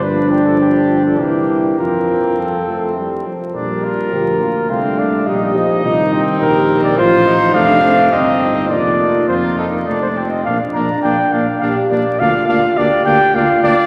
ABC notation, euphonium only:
X:1
M:3/4
L:1/8
Q:1/4=104
K:Bb
V:1 name="Euphonium"
D4 =E2 | F4- F z | G,2 F, B, A,2 | G, F, E,4 |
F,2 A, A, C2 | B,4 A, z | B, B, B, B, B, B, | B, B, B, B, B, B, |]